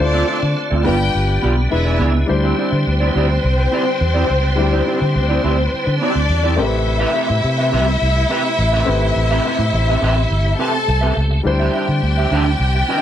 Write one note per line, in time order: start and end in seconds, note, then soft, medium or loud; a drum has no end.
0.00 0.22 D2 loud
0.00 0.85 D3 medium
0.00 0.85 A3 medium
0.00 0.85 C4 medium
0.00 0.83 D4 medium
0.00 0.56 D4 medium
0.00 0.84 F4 medium
0.00 1.70 F4 medium
0.00 0.85 C5 medium
0.00 0.56 D5 medium
0.12 0.26 C4 medium
0.12 0.27 F4 medium
0.12 0.28 A4 medium
0.12 0.28 D5 medium
0.27 0.42 C4 medium
0.27 0.42 F4 medium
0.27 0.42 A4 medium
0.27 0.41 D5 medium
0.42 0.54 D3 medium
0.42 muted clean electric guitar stroke soft
0.56 muted clean electric guitar stroke soft
0.70 0.88 D2 loud
0.70 0.83 C4 medium
0.70 0.83 F4 medium
0.70 0.84 A4 medium
0.70 0.84 D5 medium
0.84 1.08 G1 loud
0.84 2.27 D3 medium
0.84 1.71 G3 medium
0.84 1.03 B3 medium
0.84 2.27 B3 medium
0.84 1.69 D4 medium
0.84 0.99 F4 medium
0.84 1.71 F4 medium
0.84 0.98 G4 medium
0.84 1.41 G4 medium
0.84 1.70 B4 medium
0.84 0.98 D5 medium
0.84 1.41 G5 loud
0.99 muted clean electric guitar stroke soft
1.15 1.37 G1 medium
1.28 muted clean electric guitar stroke soft
1.42 1.66 B1 medium
1.42 1.60 B3 medium
1.42 1.57 F4 medium
1.42 1.57 G4 medium
1.42 1.55 D5 medium
1.57 muted clean electric guitar stroke soft
1.70 2.01 E1 medium
1.70 2.28 G#3 medium
1.70 2.26 D4 medium
1.70 2.27 E4 medium
1.70 1.99 E4 medium
1.70 2.28 E4 medium
1.70 2.29 B4 medium
1.70 2.00 E5 medium
1.70 muted clean electric guitar stroke soft
1.85 1.98 B3 medium
1.85 1.99 E4 medium
1.85 1.99 G#4 medium
1.85 1.99 D5 medium
1.99 2.23 C#2 medium
1.99 2.17 B3 loud
1.99 2.15 E4 loud
1.99 2.14 G#4 loud
1.99 2.13 D5 loud
2.15 muted clean electric guitar stroke medium
2.26 2.52 D2 loud
2.26 6.54 D3 medium
2.26 4.53 G3 medium
2.26 6.54 G3 medium
2.26 5.97 C4 medium
2.26 6.54 C4 medium
2.26 4.53 D4 medium
2.26 4.53 E4 medium
2.26 6.55 E4 medium
2.26 5.97 C5 medium
2.26 4.54 C5 medium
2.26 muted clean electric guitar stroke soft
2.43 2.56 C4 medium
2.43 2.57 E4 medium
2.43 2.58 G4 medium
2.43 2.58 D5 medium
2.57 2.71 C4 medium
2.57 2.72 E4 medium
2.57 2.71 G4 medium
2.57 2.70 D5 medium
2.71 2.83 D3 medium
2.71 muted clean electric guitar stroke soft
2.85 3.09 D2 medium
2.85 muted clean electric guitar stroke soft
3.00 3.13 C4 medium
3.00 3.14 E4 medium
3.00 3.15 G4 medium
3.00 3.14 D5 medium
3.15 3.38 D2 medium
3.15 3.33 C4 medium
3.15 3.29 E4 medium
3.15 3.29 G4 medium
3.15 3.28 D5 medium
3.29 muted clean electric guitar stroke medium
3.44 3.66 C2 medium
3.57 muted clean electric guitar stroke soft
3.71 3.90 C4 medium
3.71 3.86 E4 medium
3.71 3.85 G4 medium
3.71 3.85 D5 medium
3.86 muted clean electric guitar stroke soft
4.00 4.23 E2 loud
4.00 muted clean electric guitar stroke soft
4.14 4.27 C4 medium
4.14 4.28 E4 medium
4.14 4.28 G4 medium
4.14 4.29 D5 medium
4.29 4.58 C#2 medium
4.29 muted clean electric guitar stroke soft
4.43 muted clean electric guitar stroke soft
4.56 4.80 D2 medium
4.56 6.53 G3 medium
4.56 6.54 D4 medium
4.56 6.54 E4 medium
4.56 6.55 G4 medium
4.56 muted clean electric guitar stroke medium
4.72 4.85 C4 medium
4.72 4.85 E4 medium
4.72 4.86 G4 medium
4.72 4.87 D5 medium
4.86 5.00 C4 medium
4.86 5.01 E4 medium
4.86 5.00 G4 medium
4.86 5.00 D5 medium
5.01 5.17 D3 medium
5.01 muted clean electric guitar stroke soft
5.14 5.38 D2 medium
5.14 muted clean electric guitar stroke soft
5.29 5.42 C4 medium
5.29 5.43 E4 medium
5.29 5.44 G4 medium
5.29 5.43 D5 medium
5.43 5.67 D2 medium
5.43 5.61 C4 medium
5.43 5.59 E4 medium
5.43 5.58 G4 medium
5.43 5.57 D5 medium
5.59 muted clean electric guitar stroke medium
5.86 5.98 D3 loud
5.86 muted clean electric guitar stroke medium
6.01 6.21 C4 medium
6.01 6.57 D4 medium
6.01 6.15 E4 medium
6.01 6.15 G4 medium
6.01 6.57 D5 medium
6.01 6.13 D5 medium
6.15 6.27 D2 medium
6.15 muted clean electric guitar stroke soft
6.29 6.59 E2 loud
6.29 muted clean electric guitar stroke soft
6.44 6.56 C4 medium
6.44 6.58 E4 medium
6.44 6.57 G4 medium
6.44 6.59 D5 medium
6.56 7.03 A1 loud
6.56 11.41 C3 medium
6.56 8.82 A3 medium
6.56 11.41 A3 medium
6.56 8.83 C4 medium
6.56 10.55 E4 medium
6.56 8.83 G4 medium
6.56 11.41 G4 medium
6.56 6.65 A#4 medium
6.56 8.85 B4 medium
6.56 10.55 E5 loud
6.56 muted clean electric guitar stroke soft
6.65 8.87 B4 medium
6.71 muted clean electric guitar stroke soft
6.85 muted clean electric guitar stroke soft
6.99 7.12 C4 medium
6.99 7.13 G4 medium
6.99 7.14 B4 medium
6.99 7.14 E5 loud
7.14 7.29 C4 medium
7.14 7.29 G4 medium
7.14 7.28 B4 medium
7.14 7.27 E5 medium
7.29 7.41 A2 medium
7.29 muted clean electric guitar stroke soft
7.43 7.75 C3 loud
7.43 muted clean electric guitar stroke soft
7.58 7.71 C4 medium
7.58 7.71 G4 medium
7.58 7.72 B4 medium
7.58 7.72 E5 medium
7.72 7.96 C2 medium
7.72 7.90 C4 medium
7.72 7.88 G4 medium
7.72 7.87 B4 medium
7.72 7.87 E5 medium
7.88 muted clean electric guitar stroke soft
8.02 8.24 C2 medium
8.16 muted clean electric guitar stroke medium
8.29 8.48 C4 medium
8.29 8.45 G4 medium
8.29 8.44 B4 medium
8.29 8.43 E5 medium
8.44 muted clean electric guitar stroke soft
8.59 8.81 A1 medium
8.59 muted clean electric guitar stroke soft
8.72 8.86 C4 medium
8.72 8.86 G4 medium
8.72 8.87 B4 medium
8.72 8.87 E5 medium
8.85 9.10 G#1 medium
8.85 11.11 A3 medium
8.85 11.12 C4 medium
8.85 11.43 C4 medium
8.85 11.13 G4 medium
8.85 11.13 B4 medium
8.85 muted clean electric guitar stroke soft
9.01 muted clean electric guitar stroke medium
9.16 9.38 A1 medium
9.16 muted clean electric guitar stroke soft
9.31 9.44 C4 medium
9.31 9.45 G4 medium
9.31 9.45 B4 medium
9.31 9.46 E5 medium
9.45 9.59 C4 medium
9.45 9.59 G4 medium
9.45 9.60 B4 medium
9.45 9.59 E5 medium
9.59 9.70 A2 medium
9.59 muted clean electric guitar stroke medium
9.73 9.96 A1 medium
9.73 muted clean electric guitar stroke soft
9.88 10.01 C4 medium
9.88 10.01 G4 medium
9.88 10.03 B4 medium
9.88 10.02 E5 medium
10.02 10.25 A1 medium
10.02 10.20 C4 medium
10.02 10.17 G4 medium
10.02 10.16 B4 medium
10.02 10.16 E5 medium
10.17 muted clean electric guitar stroke soft
10.31 10.53 G1 medium
10.45 muted clean electric guitar stroke soft
10.59 10.77 C4 medium
10.59 10.74 G4 medium
10.59 11.16 A4 medium
10.59 10.73 B4 medium
10.59 10.72 E5 medium
10.59 11.15 A5 medium
10.73 muted clean electric guitar stroke soft
10.87 11.11 C2 medium
10.87 muted clean electric guitar stroke soft
11.01 11.15 C4 medium
11.01 11.15 G4 medium
11.01 11.16 B4 medium
11.01 11.16 E5 medium
11.16 11.39 C#2 medium
11.16 muted clean electric guitar stroke medium
11.31 muted clean electric guitar stroke medium
11.43 11.68 D2 loud
11.43 13.02 D3 medium
11.43 13.02 G3 medium
11.43 13.02 C4 medium
11.43 13.02 D4 medium
11.43 13.02 E4 medium
11.43 13.02 G4 medium
11.43 13.02 C5 medium
11.43 13.02 G5 medium
11.43 muted clean electric guitar stroke soft
11.60 11.73 D4 medium
11.60 11.73 G4 medium
11.60 11.74 C5 medium
11.60 11.75 E5 medium
11.74 11.88 D4 medium
11.74 11.88 G4 medium
11.74 11.88 C5 medium
11.74 11.88 E5 medium
11.89 12.00 D3 medium
11.89 muted clean electric guitar stroke soft
12.03 12.25 D2 medium
12.03 muted clean electric guitar stroke soft
12.17 12.30 D4 medium
12.17 12.32 G4 medium
12.17 12.32 C5 medium
12.17 12.31 E5 medium
12.31 12.54 D2 medium
12.31 12.50 D4 loud
12.31 12.47 G4 medium
12.31 12.46 C5 medium
12.31 12.45 E5 loud
12.46 muted clean electric guitar stroke soft
12.60 12.82 C2 medium
12.75 muted clean electric guitar stroke medium
12.88 13.02 D4 medium
12.88 13.02 G4 medium
12.88 13.02 C5 medium
12.88 13.02 E5 loud